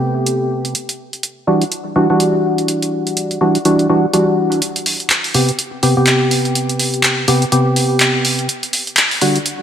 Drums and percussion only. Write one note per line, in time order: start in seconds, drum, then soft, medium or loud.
0.26 closed hi-hat medium
0.65 closed hi-hat soft
0.75 closed hi-hat medium
0.89 closed hi-hat soft
1.13 closed hi-hat soft
1.23 closed hi-hat medium
1.62 closed hi-hat soft
1.72 closed hi-hat medium
2.20 closed hi-hat medium
2.58 closed hi-hat soft
2.68 closed hi-hat medium
2.82 closed hi-hat soft
3.07 closed hi-hat soft
3.17 closed hi-hat medium
3.31 closed hi-hat soft
3.55 closed hi-hat soft
3.65 closed hi-hat medium
3.79 closed hi-hat soft
4.13 closed hi-hat medium
4.52 closed hi-hat soft
4.62 closed hi-hat medium
4.76 closed hi-hat medium
4.86 open hi-hat loud
5.00 closed hi-hat soft
5.10 clap loud
5.10 closed hi-hat medium
5.24 open hi-hat medium
5.34 open hi-hat loud
5.49 closed hi-hat medium
5.59 closed hi-hat medium
5.83 open hi-hat loud
6.07 clap loud
6.07 closed hi-hat medium
6.31 open hi-hat loud
6.45 closed hi-hat soft
6.55 closed hi-hat medium
6.69 closed hi-hat soft
6.79 open hi-hat loud
6.94 closed hi-hat soft
7.03 clap loud
7.03 closed hi-hat medium
7.28 open hi-hat loud
7.42 closed hi-hat medium
7.52 closed hi-hat medium
7.76 open hi-hat loud
8.00 clap loud
8.00 closed hi-hat medium
8.25 open hi-hat loud
8.39 closed hi-hat soft
8.49 closed hi-hat medium
8.63 closed hi-hat soft
8.73 open hi-hat loud
8.87 closed hi-hat soft
8.97 clap loud
8.97 closed hi-hat medium
9.11 open hi-hat medium
9.21 open hi-hat loud
9.36 closed hi-hat soft
9.46 closed hi-hat medium